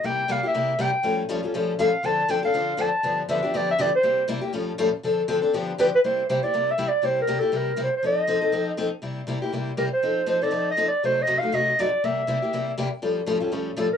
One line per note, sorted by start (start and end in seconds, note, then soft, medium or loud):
0.03 0.22 C3 medium
0.03 0.23 G3 medium
0.03 0.23 A#3 medium
0.03 0.23 E4 medium
0.03 0.23 G4 medium
0.03 0.33 G5 loud
0.28 0.39 C3 medium
0.28 0.40 G3 medium
0.28 0.40 A#3 medium
0.28 0.40 E4 medium
0.28 0.40 G4 loud
0.28 0.45 F5 medium
0.43 0.54 A#3 soft
0.43 0.54 E4 medium
0.43 0.54 G4 medium
0.43 0.83 E5 medium
0.54 0.73 C3 medium
0.54 0.73 G3 medium
0.54 0.73 A#3 medium
0.54 0.73 E4 medium
0.54 0.73 G4 medium
0.79 0.89 C3 medium
0.79 0.89 G3 medium
0.79 0.90 A#3 medium
0.79 0.90 E4 medium
0.79 0.90 G4 loud
0.79 1.20 G5 medium
1.03 1.22 A2 medium
1.03 1.22 F3 medium
1.03 1.22 G3 medium
1.03 1.22 C#4 medium
1.03 1.23 F4 medium
1.03 1.23 A4 medium
1.29 1.39 A2 medium
1.29 1.40 F3 loud
1.29 1.39 G3 medium
1.29 1.40 C#4 medium
1.29 1.40 F4 loud
1.29 1.40 A4 medium
1.43 1.53 G3 soft
1.43 1.54 C#4 soft
1.43 1.53 F4 medium
1.43 1.53 A4 medium
1.54 1.72 A2 medium
1.54 1.73 F3 medium
1.54 1.73 G3 medium
1.54 1.73 C#4 medium
1.54 1.73 F4 medium
1.54 1.73 A4 medium
1.79 1.89 A2 medium
1.79 1.89 F3 medium
1.79 1.89 G3 medium
1.79 1.90 C#4 medium
1.79 1.90 F4 medium
1.79 1.90 A4 loud
1.79 2.07 F5 medium
2.03 2.22 D3 medium
2.03 2.22 F3 medium
2.03 2.22 C4 medium
2.03 2.22 D4 medium
2.03 2.22 A4 medium
2.03 2.32 A5 loud
2.28 2.39 D3 medium
2.28 2.39 F3 medium
2.28 2.39 C4 medium
2.28 2.40 D4 loud
2.28 2.39 A4 medium
2.28 2.44 G5 medium
2.43 2.53 C4 medium
2.43 2.54 D4 medium
2.43 2.53 A4 medium
2.43 2.83 F5 medium
2.54 2.72 D3 medium
2.54 2.72 F3 medium
2.54 2.72 C4 medium
2.54 2.73 D4 medium
2.54 2.73 A4 medium
2.77 2.88 D3 medium
2.77 2.89 F3 medium
2.77 2.89 C4 loud
2.77 2.89 D4 medium
2.77 2.89 A4 loud
2.77 3.19 A5 medium
3.03 3.22 G2 medium
3.03 3.22 D3 medium
3.03 3.22 F3 medium
3.03 3.22 B3 medium
3.03 3.22 D4 medium
3.03 3.22 G4 medium
3.28 3.39 G2 medium
3.28 3.39 D3 medium
3.28 3.39 F3 medium
3.28 3.39 B3 medium
3.28 3.39 D4 loud
3.28 3.39 G4 loud
3.28 3.58 E5 medium
3.43 3.53 F3 medium
3.43 3.53 B3 soft
3.43 3.53 D4 medium
3.43 3.53 G4 medium
3.54 3.72 G2 medium
3.54 3.72 D3 medium
3.54 3.72 F3 medium
3.54 3.72 B3 medium
3.54 3.73 D4 medium
3.54 3.72 G4 medium
3.54 3.69 D5 medium
3.71 3.83 E5 loud
3.78 3.89 G2 medium
3.78 3.89 D3 loud
3.78 3.89 F3 loud
3.78 3.89 B3 medium
3.78 3.89 D4 loud
3.78 3.89 G4 loud
3.78 3.94 D5 medium
3.95 4.27 C5 loud
4.03 4.21 C3 medium
4.03 4.21 G3 medium
4.03 4.22 A#3 medium
4.03 4.22 E4 medium
4.03 4.22 G4 medium
4.28 4.38 C3 medium
4.28 4.39 G3 loud
4.28 4.39 A#3 medium
4.28 4.39 E4 medium
4.28 4.39 G4 loud
4.41 4.53 A#3 soft
4.41 4.53 E4 medium
4.41 4.52 G4 medium
4.53 4.71 A2 medium
4.53 4.71 F3 medium
4.53 4.72 G3 medium
4.53 4.72 C#4 medium
4.53 4.72 F4 medium
4.53 4.72 A4 medium
4.78 4.88 A2 medium
4.78 4.88 F3 medium
4.78 4.89 G3 medium
4.78 4.89 C#4 loud
4.78 4.89 F4 loud
4.78 4.89 A4 loud
5.03 5.21 D3 medium
5.03 5.22 F3 medium
5.03 5.22 C4 medium
5.03 5.22 D4 medium
5.03 5.22 A4 medium
5.28 5.38 D3 medium
5.28 5.38 F3 medium
5.28 5.38 C4 medium
5.28 5.39 D4 loud
5.28 5.39 A4 loud
5.42 5.53 C4 soft
5.42 5.53 D4 medium
5.42 5.52 A4 medium
5.54 5.71 G2 medium
5.54 5.72 D3 medium
5.54 5.72 F3 medium
5.54 5.72 B3 medium
5.54 5.72 D4 medium
5.54 5.72 G4 medium
5.78 5.88 G2 medium
5.78 5.89 D3 medium
5.78 5.89 F3 medium
5.78 5.89 B3 loud
5.78 5.89 D4 loud
5.78 5.89 G4 loud
5.78 5.86 B4 medium
5.95 5.99 B4 medium
6.04 6.22 C3 medium
6.04 6.22 G3 medium
6.04 6.22 A#3 medium
6.04 6.22 E4 medium
6.04 6.22 G4 medium
6.04 6.27 C5 medium
6.29 6.39 C3 medium
6.29 6.39 G3 medium
6.29 6.39 A#3 medium
6.29 6.39 E4 medium
6.29 6.39 G4 medium
6.29 6.45 C5 medium
6.43 6.53 A#3 soft
6.43 6.53 E4 soft
6.43 6.53 G4 soft
6.43 6.73 D5 medium
6.54 6.71 C3 medium
6.54 6.72 G3 medium
6.54 6.72 A#3 medium
6.54 6.72 E4 medium
6.54 6.72 G4 medium
6.71 6.90 E5 medium
6.78 6.88 C3 medium
6.78 6.88 G3 medium
6.78 6.89 A#3 medium
6.78 6.89 E4 medium
6.78 6.89 G4 medium
6.88 7.07 D5 medium
7.02 7.21 C3 medium
7.02 7.21 G3 medium
7.02 7.21 A#3 medium
7.02 7.21 E4 medium
7.02 7.21 G4 medium
7.02 7.21 C5 medium
7.22 7.41 A#4 medium
7.27 7.38 C3 medium
7.27 7.38 G3 medium
7.27 7.38 A#3 medium
7.27 7.39 E4 medium
7.27 7.39 G4 medium
7.39 7.52 E4 soft
7.39 7.52 G4 medium
7.39 7.58 A4 medium
7.43 7.52 A#3 soft
7.52 7.71 C3 medium
7.52 7.71 G3 medium
7.52 7.71 A#3 medium
7.52 7.71 E4 medium
7.52 7.71 G4 medium
7.57 7.80 A#4 medium
7.76 7.87 C3 medium
7.76 7.88 G3 medium
7.76 7.88 A#3 medium
7.76 7.88 E4 medium
7.76 7.88 G4 medium
7.83 7.94 C5 medium
7.97 8.04 C5 medium
8.03 8.21 F3 medium
8.03 8.22 C4 medium
8.03 8.22 D#4 medium
8.03 8.22 A4 medium
8.03 8.75 D#5 medium
8.27 8.38 F3 medium
8.27 8.38 C4 medium
8.27 8.38 D#4 medium
8.27 8.39 A4 medium
8.41 8.51 C4 soft
8.41 8.52 D#4 medium
8.41 8.52 A4 medium
8.52 8.71 F3 medium
8.52 8.71 C4 medium
8.52 8.71 D#4 medium
8.52 8.71 A4 medium
8.77 8.88 F3 medium
8.77 8.88 C4 medium
8.77 8.88 D#4 medium
8.77 8.89 A4 medium
9.02 9.20 C3 medium
9.02 9.21 G3 medium
9.02 9.21 A#3 medium
9.02 9.21 E4 medium
9.02 9.21 G4 medium
9.27 9.38 C3 medium
9.27 9.38 G3 medium
9.27 9.38 A#3 medium
9.27 9.38 E4 medium
9.27 9.38 G4 medium
9.42 9.52 A#3 soft
9.42 9.52 E4 soft
9.42 9.52 G4 medium
9.53 9.71 C3 medium
9.53 9.71 G3 medium
9.53 9.71 A#3 medium
9.53 9.71 E4 medium
9.53 9.71 G4 medium
9.77 9.88 C3 medium
9.77 9.88 G3 medium
9.77 9.88 A#3 medium
9.77 9.88 E4 medium
9.77 9.88 G4 medium
9.77 9.84 A#4 medium
9.93 10.26 C5 medium
10.03 10.21 F3 medium
10.03 10.21 C4 medium
10.03 10.21 D#4 medium
10.03 10.21 A4 medium
10.26 10.37 F3 medium
10.26 10.37 C4 medium
10.26 10.38 D#4 medium
10.26 10.38 A4 medium
10.26 10.44 C5 medium
10.42 10.50 C4 medium
10.42 10.50 D#4 medium
10.42 10.51 A4 medium
10.42 10.70 D5 medium
10.51 10.70 F3 medium
10.51 10.70 C4 medium
10.51 10.70 D#4 medium
10.51 10.71 A4 medium
10.71 10.86 D#5 medium
10.77 10.88 F3 medium
10.77 10.88 C4 medium
10.77 10.88 D#4 medium
10.77 10.88 A4 medium
10.88 11.02 D5 medium
11.03 11.21 F#2 medium
11.03 11.21 C3 medium
11.03 11.21 F#3 medium
11.03 11.21 A3 medium
11.03 11.21 D#4 medium
11.03 11.22 F#4 medium
11.03 11.24 C5 medium
11.22 11.40 D#5 loud
11.27 11.37 F#2 medium
11.27 11.38 C3 medium
11.27 11.38 F#3 medium
11.27 11.38 A3 medium
11.27 11.38 D#4 medium
11.27 11.38 F#4 medium
11.39 11.52 D#4 soft
11.39 11.52 F#4 medium
11.39 11.56 F5 medium
11.43 11.52 F#3 soft
11.43 11.52 A3 soft
11.52 11.70 F#2 medium
11.52 11.70 C3 medium
11.52 11.71 F#3 medium
11.52 11.71 A3 medium
11.52 11.71 D#4 medium
11.52 11.71 F#4 medium
11.52 11.82 D#5 medium
11.79 11.88 F#2 medium
11.79 11.88 C3 medium
11.79 11.88 F#3 medium
11.79 11.89 A3 medium
11.79 11.89 D#4 medium
11.79 11.89 F#4 medium
11.79 12.06 D5 medium
12.04 12.21 C3 medium
12.04 12.21 G3 medium
12.04 12.21 A#3 medium
12.04 12.21 E4 medium
12.04 12.22 G4 medium
12.04 12.78 E5 medium
12.27 12.37 C3 medium
12.27 12.38 G3 medium
12.27 12.38 A#3 medium
12.27 12.38 E4 medium
12.27 12.38 G4 medium
12.42 12.53 A#3 soft
12.42 12.52 E4 medium
12.42 12.52 G4 medium
12.53 12.71 C3 medium
12.53 12.71 G3 medium
12.53 12.71 A#3 medium
12.53 12.71 E4 medium
12.53 12.71 G4 medium
12.78 12.88 C3 medium
12.78 12.88 G3 loud
12.78 12.88 A#3 medium
12.78 12.88 E4 medium
12.78 12.88 G4 loud
13.02 13.20 A2 medium
13.02 13.20 F3 medium
13.02 13.20 G3 medium
13.02 13.20 C#4 medium
13.02 13.20 F4 medium
13.02 13.21 A4 medium
13.26 13.37 A2 medium
13.26 13.37 F3 medium
13.26 13.37 G3 medium
13.26 13.37 C#4 medium
13.26 13.37 F4 medium
13.26 13.37 A4 medium
13.40 13.51 G3 soft
13.40 13.52 C#4 soft
13.40 13.51 F4 soft
13.40 13.51 A4 medium
13.52 13.70 A2 medium
13.52 13.70 F3 medium
13.52 13.70 G3 medium
13.52 13.70 C#4 medium
13.52 13.70 F4 medium
13.52 13.70 A4 medium
13.76 13.87 A2 medium
13.76 13.87 F3 medium
13.76 13.87 G3 medium
13.76 13.87 C#4 medium
13.76 13.87 F4 medium
13.76 13.88 A4 medium
13.76 13.91 A4 medium
13.93 13.97 A#4 medium